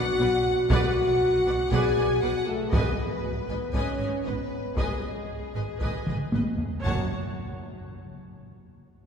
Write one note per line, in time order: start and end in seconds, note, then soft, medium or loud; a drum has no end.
0.00 0.69 F#4 loud
0.00 0.68 F#5 medium
0.19 0.27 B1 medium
0.19 0.29 B2 medium
0.19 0.28 B4 medium
0.19 0.29 D5 medium
0.70 0.78 B1 medium
0.70 0.78 B2 medium
0.70 1.69 F#4 loud
0.70 0.94 B4 medium
0.70 0.94 D5 medium
0.70 1.69 F#5 medium
0.70 0.94 F#5 medium
0.70 taiko medium
1.46 1.54 B1 medium
1.46 1.55 B2 medium
1.46 1.54 B4 medium
1.46 1.55 D5 soft
1.46 1.54 F#5 soft
1.71 1.80 B1 medium
1.71 1.80 B2 medium
1.71 2.22 G#4 medium
1.71 1.95 B4 medium
1.71 1.95 D5 medium
1.71 1.95 F#5 medium
1.71 2.22 G#5 medium
1.71 taiko medium
1.97 2.06 B1 soft
1.97 2.05 B2 soft
1.97 2.06 B4 soft
1.97 2.06 D5 soft
1.97 2.06 F#5 soft
2.22 2.30 B1 medium
2.22 2.30 B2 soft
2.22 2.47 F#4 medium
2.22 2.31 B4 medium
2.22 2.30 D5 medium
2.22 2.47 F#5 medium
2.47 2.72 A3 medium
2.47 2.73 A4 medium
2.71 2.81 G#1 medium
2.71 2.80 G#2 medium
2.71 3.75 B3 medium
2.71 3.73 B4 medium
2.71 2.97 B4 medium
2.71 2.97 D#5 medium
2.71 2.97 G#5 medium
2.71 taiko medium
3.48 3.56 G#1 soft
3.48 3.57 G#2 soft
3.48 3.58 B4 soft
3.48 3.58 D#5 soft
3.48 3.57 G#5 soft
3.74 3.82 G#1 medium
3.74 3.82 G#2 soft
3.74 4.25 C#4 medium
3.74 3.98 B4 soft
3.74 4.24 C#5 medium
3.74 3.98 D#5 soft
3.74 3.98 G#5 medium
3.74 taiko medium
3.99 4.08 G#1 soft
3.99 4.08 G#2 soft
3.99 4.09 B4 soft
3.99 4.09 D#5 soft
3.99 4.07 G#5 soft
4.24 4.33 G#1 soft
4.24 4.33 G#2 soft
4.24 4.77 B3 medium
4.24 4.77 B4 medium
4.24 4.35 B4 soft
4.24 4.34 D#5 soft
4.76 4.85 G#1 soft
4.76 4.85 G#2 soft
4.76 6.59 G#3 medium
4.76 6.59 G#4 soft
4.76 5.01 B4 soft
4.76 5.01 D#5 medium
4.76 5.02 G#5 soft
4.76 taiko medium
5.55 5.63 G#1 soft
5.55 5.63 G#2 soft
5.55 5.63 B4 soft
5.55 5.63 D#5 soft
5.55 5.64 G#5 soft
5.81 5.90 G#1 soft
5.81 5.89 G#2 soft
5.81 6.05 B4 soft
5.81 6.05 D#5 soft
5.81 6.06 G#5 soft
5.81 taiko medium
6.07 6.15 G#1 soft
6.07 6.15 G#2 soft
6.07 6.15 B4 soft
6.07 6.16 D#5 soft
6.07 6.16 G#5 soft
6.07 taiko mid medium
6.32 6.41 G#1 soft
6.32 6.40 G#2 soft
6.32 6.42 B4 soft
6.32 6.42 D#5 soft
6.32 taiko high medium
6.58 taiko low medium
6.84 7.13 F#1 medium
6.84 7.13 F#2 soft
6.84 7.09 F#2 soft
6.84 7.05 F#3 medium
6.84 7.13 F#4 medium
6.84 7.13 C#5 medium
6.84 7.13 F#5 soft
6.84 7.13 A5 soft
6.84 taiko soft